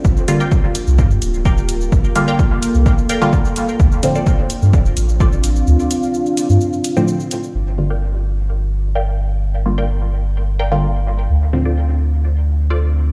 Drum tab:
HH |--x---x---x---x-|--x---x---x---x-|--x---x---x---x-|--x---x---x---x-|
SH |xxxxx-xxxxxxxxxx|xxxxx-xxxxxxxxxx|xxxxx-xxxxxxxxxx|xxxxxxxxxxxxxxxx|
BD |o---o---o---o---|o---o---o---o---|o---o---o---o---|----------------|

HH |----------------|----------------|----------------|
SH |----------------|----------------|----------------|
BD |----------------|----------------|----------------|